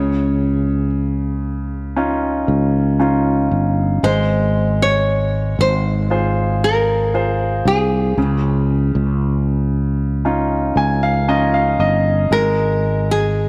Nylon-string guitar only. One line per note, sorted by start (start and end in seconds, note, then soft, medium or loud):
0.00 0.89 C#5 medium
4.04 4.82 C5 medium
4.82 5.55 C#5 medium
5.61 6.64 C5 medium
6.64 7.67 A#4 medium
7.68 11.76 G#4 medium
12.33 13.11 A#4 medium
13.11 13.49 G#4 medium